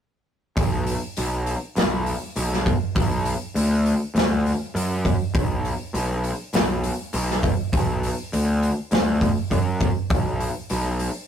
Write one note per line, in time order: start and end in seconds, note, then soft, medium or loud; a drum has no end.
0.57 0.93 B1 medium
0.57 kick loud
0.57 open hi-hat medium
0.87 open hi-hat medium
1.17 1.53 B1 medium
1.17 open hi-hat medium
1.46 open hi-hat soft
1.76 2.12 B1 medium
1.76 snare loud
1.76 open hi-hat medium
2.06 open hi-hat medium
2.36 2.72 B1 medium
2.36 open hi-hat medium
2.53 snare soft
2.66 kick medium
2.66 open hi-hat soft
2.96 3.32 B1 medium
2.96 kick loud
2.96 open hi-hat medium
3.25 open hi-hat medium
3.55 3.91 D2 medium
3.55 open hi-hat medium
3.86 open hi-hat soft
4.15 4.51 D2 medium
4.15 snare loud
4.15 open hi-hat medium
4.46 open hi-hat soft
4.75 5.11 F#2 medium
4.75 open hi-hat medium
5.05 kick medium
5.05 open hi-hat soft
5.34 5.70 B1 medium
5.34 kick loud
5.34 open hi-hat medium
5.65 open hi-hat soft
5.94 6.30 B1 medium
5.94 open hi-hat medium
6.24 open hi-hat soft
6.53 6.89 B1 medium
6.53 snare loud
6.53 open hi-hat medium
6.84 open hi-hat medium
7.13 7.49 B1 medium
7.13 open hi-hat medium
7.30 snare soft
7.43 kick medium
7.43 open hi-hat soft
7.73 8.09 B1 medium
7.73 kick loud
7.73 open hi-hat medium
8.03 open hi-hat medium
8.33 8.69 D2 medium
8.33 open hi-hat medium
8.62 open hi-hat soft
8.91 9.28 D2 medium
8.91 snare loud
8.91 open hi-hat medium
9.21 kick medium
9.21 open hi-hat soft
9.51 9.87 F#2 medium
9.51 kick medium
9.51 open hi-hat medium
9.80 kick medium
9.80 open hi-hat soft
10.10 10.47 B1 medium
10.10 kick loud
10.10 open hi-hat medium
10.40 open hi-hat medium
10.70 11.06 B1 medium
10.70 open hi-hat medium
10.99 open hi-hat soft